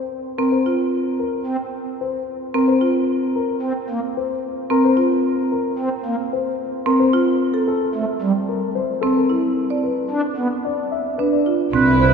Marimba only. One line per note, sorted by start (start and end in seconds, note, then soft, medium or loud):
0.39 0.56 C4 medium
0.66 0.83 F4 soft
2.54 2.72 C4 medium
2.81 2.99 F4 soft
4.70 4.88 C4 medium
4.97 5.15 F4 soft
6.86 7.04 C4 medium
7.13 7.31 F4 medium
7.54 7.72 A4 medium
9.03 9.21 C4 medium
9.30 9.48 E4 soft
9.70 9.88 D5 soft
11.19 11.37 D4 medium
11.46 11.64 F4 soft
11.73 11.91 C4 medium
12.00 12.14 C5 soft